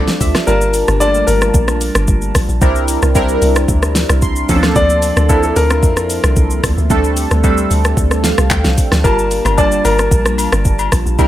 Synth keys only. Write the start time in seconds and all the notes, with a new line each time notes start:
Already playing: G3 A3 C4 D4 F4 A4 D5
0.21 E5
0.35 D5
0.47 G3 A#3 D4 F4 A5
1.01 G3 A3 D4 F4 A5
1.07 A#3
2.61 G3 C4 D4 E4 A#4
3.15 G3 C4 D4 E4 A#4
4.22 C6
4.49 F3 A#3 C4 C#4 A4
4.56 D4
5.29 F3 A#3 C4 D4 E4
6.90 G3 A3 C4 D4 A4
7.43 G3 A3 C4 D4 A4
8.24 F5
8.51 G5
9.04 G3 A#3 D4 F4 A5
9.58 G3 A#3 D4 F4 A5
11.19 G3 C4 D4 E4 A#4